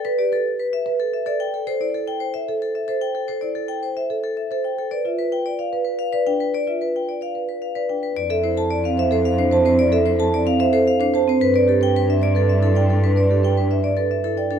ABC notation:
X:1
M:3/4
L:1/16
Q:1/4=111
K:Flyd
V:1 name="Vibraphone"
B d A z B e z A e A g A | c d A g c e z A e A g A | c d A g c e z A e A g A | d e B g d f z B f B g B |
d e B g d f z B f B g B | d e c a d f e c f c a c | d e c a d f e c f c a c | B d A g B e d A e A g A |
B d A g B e d A e A g A |]
V:2 name="Marimba"
B G B z3 B z2 d z2 | A E A z2 c A z2 c z2 | A E A z2 c A z2 c z2 | B F B z2 d B z2 d D z |
B F B z2 d B z2 d D z | z A E A z C c A z D c C | z A E A z C c A z D c C | z B G B z D d B z E d D |
z B G B z D d B z E d D |]
V:3 name="French horn"
z12 | z12 | z12 | z12 |
z12 | E12- | E8- E3 z | D12- |
D8- D3 z |]
V:4 name="Cello" clef=bass
z12 | z12 | z12 | z12 |
z12 | F,,12- | F,,12 | G,,12- |
G,,12 |]